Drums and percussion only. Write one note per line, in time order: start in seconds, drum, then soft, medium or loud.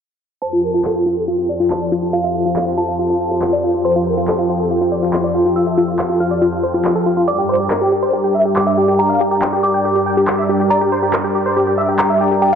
0.85 clap loud
1.70 clap loud
2.56 clap loud
3.42 clap loud
4.28 clap loud
5.13 clap loud
5.99 clap loud
6.85 clap loud
7.70 clap loud
8.56 clap loud
9.42 clap loud
10.28 clap loud
11.13 clap loud
11.99 clap loud